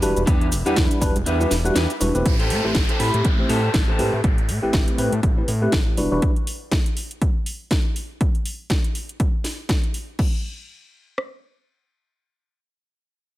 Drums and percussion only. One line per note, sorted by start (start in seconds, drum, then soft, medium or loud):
0.02 open hi-hat medium
0.02 cabasa medium
0.17 closed hi-hat soft
0.17 cabasa soft
0.27 kick loud
0.27 closed hi-hat medium
0.27 cabasa soft
0.41 closed hi-hat soft
0.52 open hi-hat loud
0.52 cabasa medium
0.66 closed hi-hat soft
0.66 cabasa soft
0.76 kick loud
0.76 snare loud
0.76 closed hi-hat medium
0.76 cabasa soft
0.91 closed hi-hat medium
0.91 cabasa soft
1.02 kick medium
1.02 open hi-hat medium
1.02 cabasa medium
1.16 closed hi-hat medium
1.16 cabasa soft
1.26 closed hi-hat medium
1.26 cabasa soft
1.41 cabasa soft
1.51 snare medium
1.51 open hi-hat loud
1.51 cabasa medium
1.65 closed hi-hat soft
1.65 cabasa soft
1.76 snare loud
1.76 closed hi-hat medium
1.76 cabasa soft
1.90 closed hi-hat soft
1.90 cabasa soft
2.01 open hi-hat medium
2.01 cabasa medium
2.15 closed hi-hat soft
2.15 cabasa soft
2.26 kick loud
2.26 closed hi-hat medium
2.40 closed hi-hat soft
2.50 open hi-hat loud
2.75 kick loud
2.75 snare loud
2.75 closed hi-hat medium
2.89 closed hi-hat medium
3.00 open hi-hat medium
3.14 closed hi-hat medium
3.25 kick loud
3.25 closed hi-hat medium
3.49 open hi-hat loud
3.74 kick loud
3.74 snare loud
3.74 closed hi-hat medium
3.99 open hi-hat medium
4.24 kick loud
4.24 closed hi-hat medium
4.38 closed hi-hat soft
4.49 open hi-hat loud
4.73 kick loud
4.73 snare loud
4.73 closed hi-hat medium
4.88 closed hi-hat medium
4.98 open hi-hat loud
5.13 closed hi-hat medium
5.23 kick loud
5.23 closed hi-hat medium
5.48 open hi-hat loud
5.72 kick loud
5.72 snare loud
5.72 closed hi-hat medium
5.97 open hi-hat medium
6.22 kick loud
6.22 closed hi-hat medium
6.36 closed hi-hat soft
6.47 open hi-hat loud
6.71 kick loud
6.71 snare loud
6.71 closed hi-hat medium
6.86 closed hi-hat soft
6.97 open hi-hat medium
7.11 closed hi-hat soft
7.22 kick loud
7.22 closed hi-hat medium
7.46 open hi-hat loud
7.71 kick loud
7.71 snare loud
7.71 closed hi-hat medium
7.96 open hi-hat medium
8.21 kick loud
8.21 closed hi-hat medium
8.35 closed hi-hat soft
8.45 open hi-hat loud
8.70 kick loud
8.70 snare loud
8.70 closed hi-hat medium
8.84 closed hi-hat soft
8.95 open hi-hat medium
9.09 closed hi-hat soft
9.20 kick loud
9.20 closed hi-hat medium
9.44 snare medium
9.44 open hi-hat loud
9.69 kick loud
9.69 snare loud
9.69 closed hi-hat medium
9.84 closed hi-hat soft
9.94 open hi-hat medium
10.19 kick loud
10.19 crash medium
11.18 cross-stick medium